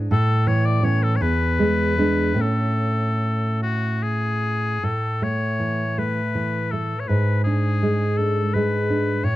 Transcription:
Already playing: D4
0.11 A2 A4
0.47 E3 C#5
0.66 D5
0.83 E3 C#4 C#5
1.03 A4
1.16 C#5
1.21 E2 B4
1.59 G#3
1.98 G#3 D4
2.34 A2 A3 C#4
2.41 A4
3.63 F#4
4.03 G#4
4.83 A2 A4
5.22 A3 C#5
5.59 E3
5.98 A3 B4
6.35 E3
6.71 A3 A4
7.00 C#5
7.08 G#2 B4
7.44 D4 G#4
7.83 G#3
8.17 D4 A4
8.54 G#3 B4
8.90 D4
9.23 A2 C#5

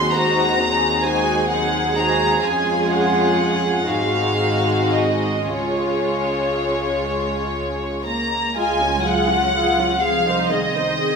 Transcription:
Already playing: D#2 F#3 C4 D#4 F#4 G#4 C6
0.12 G#3 D#4 F#4 C5 A#5
0.59 F#3 C4 D#4 G#4
1.04 G#3 D#4 F#4 G#4 C5 G#5
1.49 F#3 C4 D#4 G#4 F#5
1.95 G#3 D#4 A#5
1.99 F#4 C5
2.41 F2 G#3 C#4 F4 G#4 G#5
2.92 F#5
3.89 G#1 G#3 C4 D#4 F#4 G#4 F5
4.94 D#5
5.46 C#2 G#3 C#4 F4 G#4 C#5
8.06 A#3 A#5
8.57 C#2 G#3 F4 G#4 G#5
8.81 C#4 F4
9.04 F#3 F4 G#4 F#5
9.29 C#4 F4
9.56 F4 G#4
9.79 C#4 F4
10.01 C2 F3 C4 G#4 F5
10.29 D#4 C5
10.48 D#3 C4 G#4 D#5
10.54 D#5
10.76 D#4 C5
10.99 C4 G#4

